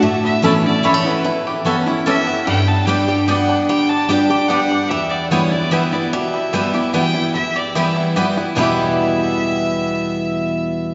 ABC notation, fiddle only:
X:1
M:3/4
L:1/8
Q:1/4=148
K:Edor
V:1 name="Fiddle"
e e d d c B- | B z3 e2 | g a g2 f2 | g a g2 f2 |
e d c d e d | e4 g2 | e d e3 z | e6- |
e6 |]